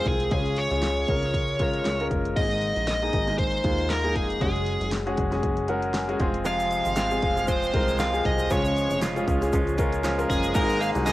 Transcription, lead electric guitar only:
0.07 0.31 G#4 medium
0.32 0.58 G#4 medium
0.58 2.07 C#5 medium
2.36 2.87 D#5 loud
2.88 3.35 D#5 medium
3.39 3.92 C5 medium
3.90 4.14 A#4 medium
4.16 4.41 G#4 medium
4.43 4.90 G#4 medium
6.46 6.96 F5 loud
6.97 7.45 F5 medium
7.48 7.96 C5 medium
8.00 8.23 F5 medium
8.26 8.51 D#5 medium
8.52 8.99 C#5 medium
10.30 10.55 G#4 medium
10.56 10.82 A#4 medium
10.81 10.88 F5 loud
11.06 11.12 D#5 medium

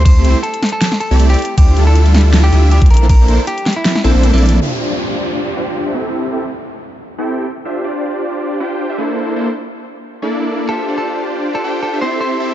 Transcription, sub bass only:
0.00 0.26 D2 loud
0.25 0.35 C2 loud
1.11 1.36 C2 loud
1.58 1.75 D2 loud
1.77 2.51 D2 loud
2.53 2.80 D2 medium
2.82 2.89 D2 loud
2.90 3.27 A#1 loud
3.28 3.38 A#1 loud
4.04 4.13 A#1 loud
4.15 4.32 A#1 loud
4.33 4.60 A#1 loud

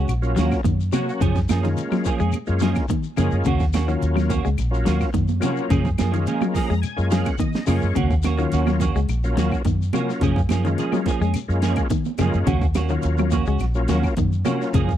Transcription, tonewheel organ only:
0.22 0.61 F#3 medium
0.22 0.61 A#3 medium
0.22 0.61 C#4 medium
0.22 0.61 F4 medium
0.92 1.21 F#3 medium
0.92 1.21 A#3 medium
0.92 1.21 C#4 medium
0.92 1.21 F#4 medium
1.63 2.10 G#3 medium
1.63 2.10 A#3 medium
1.63 2.10 C#4 medium
1.63 2.10 F4 medium
2.47 2.86 G#3 medium
2.47 2.86 A#3 medium
2.47 2.86 C#4 medium
2.47 2.86 F4 medium
3.17 3.45 G#3 medium
3.17 3.46 A#3 medium
3.17 3.46 C#4 medium
3.17 3.45 F4 medium
3.88 4.34 F#3 medium
3.88 4.34 A#3 medium
3.88 4.35 C#4 medium
3.88 4.35 F4 medium
4.71 5.10 F#3 medium
4.71 5.11 A#3 medium
4.71 5.10 C#4 medium
4.71 5.10 F4 medium
5.40 5.70 F#3 medium
5.40 5.70 A#3 medium
5.40 5.70 C#4 medium
5.40 5.70 F4 loud
6.12 6.59 G#3 medium
6.12 6.59 A#3 medium
6.12 6.59 C#4 medium
6.12 6.59 F4 medium
6.54 6.81 A#5 medium
6.82 7.09 G#5 medium
6.97 7.36 G#3 medium
6.97 7.36 A#3 medium
6.97 7.36 C#4 medium
6.97 7.36 F4 medium
7.10 7.25 F5 medium
7.25 7.38 F#5 medium
7.39 7.65 D#5 medium
7.66 7.95 G#3 medium
7.66 7.96 A#3 medium
7.66 7.96 C#4 medium
7.66 7.96 F4 medium
7.66 7.94 C#5 medium
8.38 8.85 F#3 medium
8.38 8.85 A#3 medium
8.38 8.85 C#4 medium
8.38 8.85 F4 medium
9.24 9.62 F#3 medium
9.24 9.62 A#3 medium
9.24 9.62 C#4 medium
9.24 9.62 F4 medium
9.94 10.22 F#3 medium
9.94 10.22 A#3 medium
9.94 10.22 C#4 medium
9.94 10.22 F4 medium
10.64 11.11 G#3 medium
10.64 11.11 A#3 medium
10.64 11.11 C#4 medium
10.64 11.12 F4 medium
11.48 11.88 G#3 medium
11.48 11.88 A#3 medium
11.48 11.88 C#4 medium
11.48 11.88 F4 medium
12.18 12.47 G#3 medium
12.18 12.48 A#3 medium
12.18 12.48 C#4 medium
12.18 12.48 F4 loud
12.89 13.37 F#3 medium
12.89 13.37 A#3 medium
12.89 13.37 C#4 medium
12.89 13.37 F4 medium
13.75 14.14 F#3 medium
13.75 14.14 A#3 medium
13.75 14.14 C#4 medium
13.75 14.14 F4 medium
14.45 14.74 F#3 medium
14.45 14.74 A#3 medium
14.45 14.74 C#4 medium
14.45 14.74 F4 loud

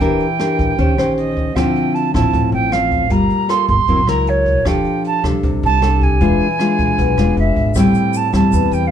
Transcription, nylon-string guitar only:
0.00 0.76 E3 medium
0.00 0.26 D4 medium
0.00 0.26 G4 medium
0.00 0.26 A#4 medium
0.39 0.77 D4 medium
0.39 0.77 G4 medium
0.39 0.77 A#4 medium
0.78 1.54 D#3 medium
0.78 0.95 C#4 medium
0.78 0.95 G4 soft
0.78 0.95 C5 medium
0.98 1.53 C#4 medium
0.98 1.53 G4 soft
0.98 1.53 C5 medium
1.56 2.31 D3 medium
1.56 2.11 F3 medium
1.56 2.11 C4 medium
1.56 2.11 E4 medium
2.14 2.69 F3 soft
2.14 2.69 C4 medium
2.14 2.69 E4 medium
2.33 3.09 A2 medium
2.72 3.09 F3 medium
2.72 3.09 C4 medium
3.10 3.86 G3 medium
3.10 3.46 A#3 medium
3.10 3.46 F4 medium
3.49 3.75 A#3 medium
3.49 3.75 F4 medium
3.49 3.75 A4 medium
3.88 4.64 F#3 soft
3.88 4.00 C4 medium
3.88 4.00 E4 medium
3.88 4.00 A#4 medium
4.08 4.63 E4 medium
4.08 4.63 A#4 medium
4.66 5.41 F3 medium
4.66 5.21 D4 medium
4.66 5.21 G4 medium
4.66 5.21 A4 medium
5.24 5.79 D4 soft
5.24 5.79 G4 soft
5.24 5.79 A4 medium
5.44 6.19 C3 soft
5.82 6.17 D4 medium
5.82 6.18 G4 medium
5.82 6.18 A4 medium
6.21 6.96 E3 medium
6.21 6.46 G#3 medium
6.21 6.46 D4 medium
6.21 6.46 F4 medium
6.60 7.15 G#3 medium
6.60 7.15 D4 medium
6.60 7.15 F4 medium
6.98 7.74 B2 medium
7.18 7.73 G#3 medium
7.18 7.73 D4 medium
7.18 7.73 F4 medium
7.76 8.51 A2 medium
7.76 8.31 G3 medium
7.76 8.31 C4 medium
7.76 8.31 E4 medium
8.32 8.88 G3 medium
8.32 8.88 C4 medium
8.32 8.88 E4 soft
8.53 8.91 E3 medium

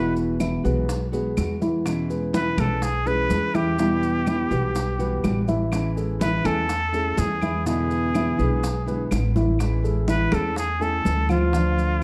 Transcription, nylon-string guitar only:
0.00 0.63 B2 medium
0.00 0.66 E3 medium
0.00 0.65 G#3 medium
0.00 0.64 B3 medium
0.00 0.62 F#4 medium
0.64 0.88 E3 soft
0.64 0.88 G#3 medium
0.64 0.88 B3 medium
0.64 0.87 F#4 medium
0.88 muted nylon-string guitar stroke medium
1.12 1.35 E3 soft
1.12 1.36 G#3 medium
1.12 1.36 B3 medium
1.12 1.35 F#4 medium
1.37 1.84 E3 soft
1.37 1.84 G#3 medium
1.37 1.85 B3 medium
1.37 1.85 F#4 medium
1.85 2.56 B2 medium
1.85 2.59 E3 medium
1.85 2.57 G#3 medium
1.85 2.57 C#4 medium
1.85 2.56 E4 medium
2.57 2.81 E3 soft
2.57 2.81 G#3 medium
2.57 2.81 C#4 medium
2.57 2.80 E4 medium
2.82 muted nylon-string guitar stroke medium
3.06 3.28 E3 soft
3.06 3.29 G#3 medium
3.06 3.29 C#4 medium
3.06 3.29 E4 medium
3.30 3.77 E3 soft
3.30 3.78 G#3 soft
3.30 3.78 C#4 medium
3.30 3.78 E4 soft
3.77 4.50 B2 medium
3.77 4.52 E3 medium
3.77 4.50 G3 medium
3.77 4.50 B3 medium
4.50 4.74 E3 medium
4.50 4.74 G3 medium
4.50 4.74 B3 medium
4.50 4.74 F#4 medium
4.74 muted nylon-string guitar stroke medium
4.99 5.21 E3 medium
4.99 5.22 G3 medium
4.99 5.23 B3 medium
4.99 5.22 F#4 medium
5.22 5.70 E3 medium
5.22 5.71 G3 soft
5.22 5.71 B3 medium
5.22 5.72 F#4 medium
5.71 6.68 E3 medium
5.71 6.45 G#3 medium
5.71 6.44 C#4 medium
5.71 6.43 E4 medium
6.44 6.68 G#3 medium
6.44 6.68 C#4 medium
6.44 6.68 E4 medium
6.69 muted nylon-string guitar stroke medium
6.92 7.17 G#3 medium
6.92 7.17 C#4 medium
6.92 7.16 E4 medium
7.17 7.65 E3 soft
7.17 7.65 G#3 soft
7.17 7.66 E4 soft
7.65 8.37 B2 medium
7.65 8.38 D3 medium
7.65 8.38 G#3 medium
7.65 8.38 B3 medium
7.65 8.37 E4 medium
8.38 8.62 D3 soft
8.38 8.62 G#3 medium
8.38 8.62 B3 medium
8.38 8.62 E4 medium
8.63 muted nylon-string guitar stroke medium
8.86 9.10 D3 soft
8.86 9.11 G#3 medium
8.86 9.11 B3 medium
8.86 9.10 E4 medium
9.11 9.59 D3 soft
9.11 9.59 G#3 soft
9.11 9.60 B3 soft
9.11 9.60 E4 soft
9.60 10.32 E3 medium
9.60 10.32 G#3 medium
9.60 10.32 C#4 medium
9.60 10.31 E4 medium
10.32 10.55 G#3 medium
10.32 10.56 C#4 medium
10.32 10.56 E4 medium
10.56 muted nylon-string guitar stroke medium
10.80 11.03 G#3 medium
10.80 11.04 C#4 medium
10.80 11.04 E4 medium
11.04 11.52 E3 soft
11.04 11.53 G#3 soft
11.04 11.53 C#4 medium
11.04 11.53 E4 soft
11.52 12.03 D3 medium
11.52 12.03 A3 medium
11.52 12.03 D4 medium
11.52 12.03 F4 medium

